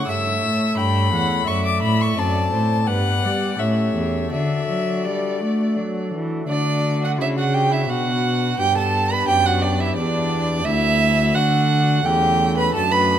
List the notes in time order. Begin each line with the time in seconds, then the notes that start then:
Already playing: F#5
0.05 G2 A3 A4 C#5 E6
0.09 G2 E5
0.42 A2
0.77 G2 G5 B5
1.13 E2 F#5
1.44 A3 A4 D5 E5 C#6
1.48 F#2
1.65 D6
1.82 A2 B5
2.01 C#6
2.13 C4 A4 D5
2.17 F#2 D5 A5
2.53 A2 C5
2.84 B3 G4 D5 F#5
2.88 G2 B4
3.23 G3 D5
3.54 C#4 G4 A4
3.59 A2 C#5 E5
3.95 E2
4.27 D4 F#4 A4
4.32 D3 D5 E5
4.67 F#3
5.04 G3 D5
5.41 A3
5.77 F#3
6.13 E3
6.45 D3 A3 D4 F#4 D5
6.49 D3
7.01 F#4 F#5
7.19 C#3 E4 E5
7.37 F#4 F#5
7.54 G4 G5
7.70 E4 E5
7.86 B3 D4 F#4
7.90 B2 F#5
8.56 G2 B3 D4 G4 G5
8.60 G2
8.75 A4 A5
9.11 B4 B5
9.28 F#2 G4 G5
9.46 F#4 F#5
9.62 D4 D5
9.80 E4 E5
9.96 E2 D4 D5
10.62 D2 A3 D4 F#4 E5
10.66 D2 E4
11.35 D3 F#4 F#5
12.02 E2 A3 C#4 G4 A4 G5
12.07 E2
12.57 B4 B5
12.71 A3 D4 F#4 A4 A5
12.75 F#2
12.91 B4 B5